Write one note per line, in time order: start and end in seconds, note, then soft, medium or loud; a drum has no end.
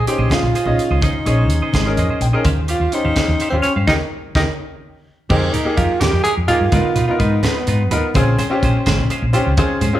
0.00 0.10 G#4 soft
0.07 0.50 C#4 medium
0.07 0.50 D#4 medium
0.07 0.33 G4 medium
0.07 0.51 G#4 medium
0.07 0.51 C5 medium
0.07 muted fretless electric bass stroke soft
0.07 closed hi-hat medium
0.18 0.29 A#1 medium
0.18 0.30 G#4 soft
0.18 0.30 C5 soft
0.18 0.30 D#5 soft
0.18 low conga medium
0.30 0.45 C#4 medium
0.30 1.02 F4 medium
0.30 0.45 G#4 medium
0.30 0.46 C5 medium
0.30 0.46 D#5 medium
0.30 kick medium
0.30 snare loud
0.30 closed hi-hat medium
0.30 high conga medium
0.43 0.52 A#1 medium
0.55 0.67 C#4 soft
0.55 0.66 G#4 medium
0.55 0.65 C5 medium
0.55 0.65 D#5 medium
0.55 muted fretless electric bass stroke soft
0.55 closed hi-hat medium
0.65 0.76 A#1 medium
0.65 1.09 C#4 medium
0.65 1.09 D#4 medium
0.65 1.09 G#4 medium
0.65 0.82 G#4 soft
0.65 0.81 C5 soft
0.65 0.81 D#5 soft
0.65 1.10 D#5 medium
0.65 low conga medium
0.79 muted fretless electric bass stroke soft
0.79 closed hi-hat medium
0.90 1.00 C#2 medium
0.90 1.02 G#4 soft
0.90 1.02 C5 soft
0.90 1.02 D#5 soft
0.90 low conga soft
1.01 1.17 C#4 medium
1.01 2.17 D#4 medium
1.01 1.17 G#4 medium
1.01 1.17 C5 medium
1.01 1.17 D#5 medium
1.01 kick loud
1.01 closed hi-hat medium
1.01 high conga medium
1.01 low conga soft
1.13 muted fretless electric bass stroke soft
1.13 low conga medium
1.25 1.50 A#1 medium
1.25 1.68 C#4 medium
1.25 1.38 C#4 medium
1.25 1.69 D#4 medium
1.25 1.38 G#4 medium
1.25 1.69 G#4 medium
1.25 1.37 C5 medium
1.25 1.70 C#5 medium
1.25 1.36 D#5 medium
1.25 closed hi-hat medium
1.37 1.53 G#4 soft
1.37 1.53 C5 soft
1.37 1.52 D#5 medium
1.50 1.60 D#2 medium
1.50 closed hi-hat medium
1.61 1.73 G#4 soft
1.61 1.74 C5 soft
1.61 1.74 D#5 medium
1.61 low conga medium
1.73 1.99 G#1 medium
1.73 1.88 C#4 medium
1.73 1.88 G#4 medium
1.73 1.89 C5 medium
1.73 1.89 D#5 medium
1.73 kick medium
1.73 snare medium
1.73 closed hi-hat medium
1.73 high conga medium
1.86 2.20 C#4 medium
1.86 2.20 D#4 medium
1.86 2.20 G#4 medium
1.86 2.21 A#4 medium
1.97 2.07 F2 medium
1.97 2.10 C#4 medium
1.97 2.09 G#4 medium
1.97 2.09 C5 medium
1.97 2.20 D#5 medium
1.97 2.08 D#5 medium
1.97 closed hi-hat medium
2.09 2.24 G#4 soft
2.09 2.24 C5 medium
2.09 2.24 D#5 medium
2.09 low conga medium
2.21 2.30 A#1 medium
2.21 2.44 G5 medium
2.21 closed hi-hat medium
2.32 2.45 C#4 medium
2.32 2.45 D#4 medium
2.32 2.46 G#4 medium
2.32 2.44 G#4 soft
2.32 2.46 A#4 medium
2.32 2.44 C5 soft
2.32 2.45 D#5 medium
2.32 low conga soft
2.45 2.74 D#2 medium
2.45 2.59 C#4 medium
2.45 2.59 G4 medium
2.45 2.60 C5 medium
2.45 2.60 F5 medium
2.45 kick loud
2.45 closed hi-hat medium
2.45 high conga medium
2.45 low conga soft
2.57 low conga medium
2.68 2.80 C#4 medium
2.68 2.95 F4 medium
2.68 2.81 G4 medium
2.68 2.80 C5 medium
2.68 2.80 F5 medium
2.68 closed hi-hat medium
2.80 2.90 D#2 medium
2.80 2.96 G4 soft
2.80 2.95 C5 soft
2.80 2.95 F5 soft
2.92 3.35 C#4 medium
2.92 3.49 D#4 loud
2.92 3.35 F4 medium
2.92 3.36 G4 medium
2.92 3.36 C5 medium
2.92 closed hi-hat medium
3.04 3.14 D#2 medium
3.04 3.15 G4 soft
3.04 3.16 C5 soft
3.04 3.16 F5 medium
3.04 low conga medium
3.16 3.30 C#4 medium
3.16 3.31 G4 medium
3.16 3.31 C5 medium
3.16 3.31 F5 medium
3.16 muted fretless electric bass stroke soft
3.16 kick medium
3.16 snare loud
3.16 closed hi-hat medium
3.16 high conga medium
3.28 3.38 D#2 medium
3.40 3.52 C#4 medium
3.40 3.52 G4 medium
3.40 3.52 C5 medium
3.40 3.51 F5 medium
3.40 muted fretless electric bass stroke soft
3.40 closed hi-hat medium
3.50 3.62 D#2 medium
3.50 3.56 C4 medium
3.50 3.88 C#4 medium
3.50 3.88 F4 medium
3.50 3.87 G4 medium
3.50 3.67 G4 soft
3.50 3.67 C5 soft
3.50 3.66 F5 soft
3.50 low conga medium
3.54 3.89 C5 medium
3.62 3.73 C#4 medium
3.62 muted fretless electric bass stroke soft
3.62 closed hi-hat medium
3.76 3.85 G2 medium
3.76 3.88 G4 soft
3.76 3.88 C5 soft
3.76 3.88 F5 soft
3.76 low conga soft
3.87 3.96 D#2 medium
3.87 3.93 D#4 medium
3.87 3.95 D#4 medium
3.87 3.96 G4 loud
3.87 3.96 A#4 medium
3.87 3.96 C#5 medium
3.87 3.96 D#5 medium
3.87 kick medium
3.87 snare medium
3.87 high conga medium
4.35 4.44 D#2 medium
4.35 4.41 D#4 medium
4.35 4.43 D#4 medium
4.35 4.43 G4 medium
4.35 4.43 A#4 medium
4.35 4.43 C#5 medium
4.35 4.43 D#5 medium
4.35 kick medium
4.35 snare medium
4.35 high conga medium
5.29 5.49 F2 medium
5.29 5.44 G#3 medium
5.29 5.55 A#3 medium
5.29 5.54 C4 medium
5.29 5.44 D#4 medium
5.29 5.56 D#4 medium
5.29 5.44 G4 medium
5.29 5.56 G4 medium
5.29 5.56 G#4 medium
5.29 5.44 A#4 medium
5.29 kick loud
5.29 crash medium
5.29 high conga medium
5.29 low conga soft
5.53 5.76 D#4 medium
5.53 5.68 D#4 soft
5.53 5.68 G4 soft
5.53 5.68 A#4 soft
5.53 closed hi-hat medium
5.53 low conga medium
5.65 6.25 A#3 medium
5.65 6.25 D#4 medium
5.65 6.25 G4 medium
5.65 6.25 G#4 medium
5.77 5.87 F2 medium
5.77 5.91 G#3 medium
5.77 5.91 D#4 medium
5.77 6.01 F4 medium
5.77 5.92 G4 medium
5.77 5.92 A#4 medium
5.77 kick medium
5.77 closed hi-hat medium
6.00 6.10 D#2 medium
6.00 6.16 G#3 medium
6.00 6.15 D#4 medium
6.00 6.23 G4 loud
6.00 6.15 G4 medium
6.00 6.15 A#4 medium
6.00 snare loud
6.00 closed hi-hat medium
6.00 high conga medium
6.00 low conga medium
6.12 6.23 F2 medium
6.12 low conga soft
6.23 6.39 G#3 medium
6.23 6.39 D#4 medium
6.23 6.39 G4 medium
6.23 6.34 G#4 medium
6.23 6.39 A#4 medium
6.23 muted fretless electric bass stroke soft
6.23 closed hi-hat medium
6.37 6.47 F2 medium
6.37 low conga soft
6.48 6.65 A#3 medium
6.48 6.66 D#4 medium
6.48 6.63 D#4 soft
6.48 7.04 F4 medium
6.48 6.63 G4 soft
6.48 6.66 G4 medium
6.48 6.66 G#4 medium
6.48 6.63 A#4 medium
6.48 closed hi-hat medium
6.48 low conga medium
6.61 6.70 G2 medium
6.61 low conga soft
6.72 6.82 G#2 loud
6.72 6.86 G#3 medium
6.72 6.98 B3 medium
6.72 6.87 D#4 medium
6.72 6.98 D#4 medium
6.72 6.87 F4 medium
6.72 6.98 F4 medium
6.72 6.99 A#4 medium
6.72 6.87 B4 medium
6.72 kick loud
6.72 closed hi-hat medium
6.72 high conga medium
6.72 low conga soft
6.95 7.06 B2 medium
6.95 7.11 D#4 soft
6.95 7.11 F4 soft
6.95 7.10 B4 medium
6.95 closed hi-hat medium
6.95 low conga medium
7.07 7.68 B3 medium
7.07 7.68 D#4 medium
7.07 7.21 F4 medium
7.07 7.69 F4 medium
7.07 7.69 A#4 medium
7.19 7.39 G#2 medium
7.19 7.34 G#3 medium
7.19 7.45 D#4 medium
7.19 7.34 D#4 medium
7.19 7.34 F4 medium
7.19 7.34 B4 medium
7.19 kick medium
7.19 closed hi-hat medium
7.43 7.58 G#3 medium
7.43 7.97 B3 medium
7.43 7.58 D#4 medium
7.43 7.58 F4 medium
7.43 7.58 B4 medium
7.43 snare loud
7.43 closed hi-hat medium
7.43 high conga medium
7.43 low conga medium
7.56 low conga soft
7.67 7.92 G#2 medium
7.67 7.82 G#3 medium
7.67 7.82 D#4 medium
7.67 7.82 F4 medium
7.67 7.82 B4 medium
7.67 closed hi-hat medium
7.80 low conga soft
7.91 8.01 D#2 medium
7.91 8.08 B3 medium
7.91 8.09 D#4 medium
7.91 8.06 D#4 soft
7.91 8.06 F4 soft
7.91 8.09 F4 medium
7.91 8.09 A#4 medium
7.91 8.05 B4 medium
7.91 closed hi-hat medium
7.91 low conga medium
8.03 low conga soft
8.14 8.34 A#1 medium
8.14 8.29 G#3 medium
8.14 8.41 C4 medium
8.14 8.41 C#4 medium
8.14 8.30 C#4 medium
8.14 8.30 F4 medium
8.14 8.41 F4 medium
8.14 8.41 G#4 loud
8.14 8.30 C5 medium
8.14 kick loud
8.14 closed hi-hat medium
8.14 high conga medium
8.14 low conga soft
8.39 8.54 C#4 soft
8.39 8.53 F4 medium
8.39 8.53 C5 medium
8.39 closed hi-hat medium
8.39 low conga medium
8.50 9.10 C4 medium
8.50 9.10 C#4 medium
8.50 9.10 F4 medium
8.50 9.11 G4 loud
8.62 8.72 A#1 medium
8.62 8.77 G#3 medium
8.62 8.77 C#4 medium
8.62 8.78 F4 medium
8.62 8.78 C5 medium
8.62 kick medium
8.62 closed hi-hat medium
8.86 8.96 G#1 medium
8.86 9.01 G#3 medium
8.86 9.01 C#4 medium
8.86 9.01 F4 medium
8.86 9.01 C5 medium
8.86 snare medium
8.86 closed hi-hat medium
8.86 high conga medium
8.86 low conga medium
8.98 9.08 A#1 medium
8.98 low conga soft
9.10 9.24 G#3 medium
9.10 9.25 C#4 medium
9.10 9.25 F4 medium
9.10 9.25 C5 medium
9.10 muted fretless electric bass stroke soft
9.10 closed hi-hat medium
9.22 9.32 A#1 medium
9.22 low conga soft
9.33 9.50 C4 medium
9.33 9.51 C#4 medium
9.33 9.49 C#4 soft
9.33 9.51 F4 medium
9.33 9.48 F4 medium
9.33 9.51 G4 medium
9.33 9.48 C5 medium
9.33 closed hi-hat medium
9.33 low conga medium
9.46 9.56 C#2 medium
9.57 9.67 D#2 medium
9.57 9.72 G#3 medium
9.57 9.83 C4 medium
9.57 9.83 C#4 medium
9.57 9.72 C#4 medium
9.57 9.83 F4 medium
9.57 9.72 F4 medium
9.57 9.84 G#4 medium
9.57 9.72 C5 medium
9.57 kick loud
9.57 closed hi-hat medium
9.57 high conga medium
9.70 muted fretless electric bass stroke soft
9.81 9.91 G#2 medium
9.81 9.97 C#4 soft
9.81 9.96 F4 soft
9.81 9.96 C5 medium
9.81 closed hi-hat medium
9.81 low conga medium
9.93 10.00 C4 medium
9.93 10.00 C#4 medium
9.93 10.00 F4 medium
9.93 10.00 G#4 medium